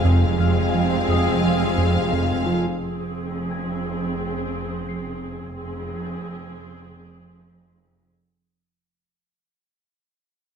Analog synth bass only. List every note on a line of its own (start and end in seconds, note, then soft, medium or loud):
0.05 0.25 F2 medium
0.39 0.60 F2 soft
0.74 0.95 F3 soft
1.08 1.29 F2 medium
1.43 1.63 F3 soft
1.78 1.98 F2 soft
2.13 2.33 F2 medium
2.46 2.67 F3 soft